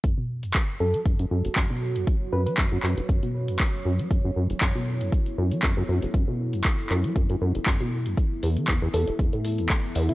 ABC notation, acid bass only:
X:1
M:4/4
L:1/16
Q:"Swing 16ths" 1/4=118
K:F#m
V:1 name="Acid bass" clef=bass
F,, B,,2 F,, z2 F,, F, F,, F,, F,, F,,, F,, B,,2 F,, | z2 F,, F, F,, F,, F,, F,,, F,, B,,2 F,, z2 F,, F, | F,, F,, F,, F,,, F,, B,,2 F,, z2 F,, F, F,, F,, F,, F,,, | F,, B,,2 F,, z2 F,, F, F,, F,, F,, F,,, F,, B,,2 F,, |
z2 E,, E, E,, E,, E,, E,,, E,, A,,2 E,, z2 E,, E, |]